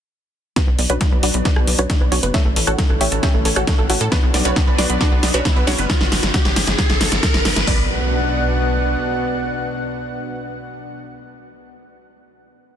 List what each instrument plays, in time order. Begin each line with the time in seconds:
0.56 analog synth pad F#3 B3 D4, synth pluck B3 D4 F#4 B4, kick, snare, closed hi-hat, riser
0.67 analog synth bass B1, synth pluck B3
0.79 analog synth bass B1, synth pluck B3 D5, open hi-hat
0.90 analog synth bass B1, synth pluck C#4 D4 F#4 B4 C#5, closed hi-hat
1.01 synth pluck B3 D4, kick, snare, closed hi-hat
1.12 analog synth bass B1, synth pluck B3 B4
1.23 analog synth bass B1, synth pluck D4 F#4 B4 D5, open hi-hat
1.34 analog synth bass B1, synth pluck B3 B5, closed hi-hat
1.45 synth pluck D4 F#4 B4 D5, kick, snare, closed hi-hat
1.56 analog synth bass B1, synth pluck B3, cross-stick
1.67 analog synth bass B1, synth pluck B3 D5, open hi-hat
1.79 analog synth bass B1, synth pluck C#4 D4 F#4 B4 C#5, closed hi-hat
1.90 synth pluck B3 D4, kick, snare, closed hi-hat
2.01 analog synth bass B1, synth pluck B3 B4
2.12 analog synth bass B1, synth pluck C#4 D4 F#4 C#5, open hi-hat
2.23 analog synth bass F#1, synth pluck B3 B4, closed hi-hat
2.34 analog synth pad E3 A3 C#4, synth pluck A3 E4 A4 C#5 E5, kick, snare, closed hi-hat
2.45 analog synth bass A1, synth pluck A3 A4
2.56 analog synth bass A1, synth pluck A4 C#5, open hi-hat
2.67 analog synth bass A1, synth pluck F#4 A4 C#5 F#5, closed hi-hat
2.78 synth pluck C#4 A4, kick, snare, closed hi-hat
2.90 analog synth bass A1, synth pluck A4
3.01 analog synth bass A1, synth pluck E4 G4 C#5 E5 G5, open hi-hat
3.12 analog synth bass A1, synth pluck A4 A5, closed hi-hat
3.23 synth pluck C#4 G4 C#5 E5 G5, kick, snare, closed hi-hat
3.34 analog synth bass A1, synth pluck A3 A4
3.45 analog synth bass A1, synth pluck A4 C#5, open hi-hat
3.56 analog synth bass A1, synth pluck F#4 A4 C#5 F#5, cross-stick, closed hi-hat
3.67 synth pluck C#4 A4, kick, snare, closed hi-hat
3.78 analog synth bass A1, synth pluck A4
3.90 analog synth bass A1, synth pluck E4 F#4 A4 C#5 F#5, open hi-hat
4.01 analog synth bass A2, synth pluck A4, closed hi-hat
4.12 analog synth pad F#3 B3 D4, synth pluck B3 D4 F#4 B4, kick, snare, closed hi-hat
4.23 analog synth bass B1, synth pluck B3
4.34 analog synth bass B1, synth pluck B3 D5, snare, open hi-hat
4.45 analog synth bass B1, synth pluck C#4 D4 F#4 B4 C#5, closed hi-hat
4.56 synth pluck B3 D4, kick, snare, closed hi-hat
4.67 analog synth bass B1, synth pluck B3 B4
4.78 analog synth bass B1, synth pluck D4 F#4 B4 D5, snare, open hi-hat
4.89 analog synth bass B1, synth pluck B3 B5, closed hi-hat
5.01 synth pluck D4 F#4 B4 D5, kick, snare, closed hi-hat
5.12 analog synth bass B1, synth pluck B3
5.23 analog synth bass B1, synth pluck B3 D5, snare, open hi-hat
5.34 analog synth bass B1, synth pluck C#4 D4 F#4 B4 C#5, closed hi-hat
5.45 synth pluck B3 D4, kick, snare, closed hi-hat
5.56 analog synth bass B1, synth pluck B3 B4
5.67 analog synth bass B1, synth pluck C#4 D4 F#4 C#5, snare, open hi-hat
5.78 analog synth bass F#1, synth pluck B3 B4, closed hi-hat
5.90 kick, snare, closed hi-hat
6.01 analog synth bass G1, snare
6.12 analog synth bass G1, snare, open hi-hat
6.23 analog synth bass G1, snare, closed hi-hat
6.34 kick, snare, closed hi-hat
6.45 analog synth bass G1, snare
6.56 analog synth bass G1, snare, open hi-hat
6.67 analog synth bass G1, snare, closed hi-hat
6.79 kick, snare, closed hi-hat
6.90 analog synth bass G1, snare
7.01 analog synth bass G1, snare, open hi-hat
7.12 analog synth bass G1, snare, closed hi-hat
7.23 kick, snare, closed hi-hat
7.34 analog synth bass G1, snare
7.45 analog synth bass G1, snare, open hi-hat
7.56 analog synth bass G1, snare, closed hi-hat
7.67 analog synth bass B1, analog synth pad B2 B3 D4 F#4 F#5, synth pluck B3 D5, kick, open hi-hat, impact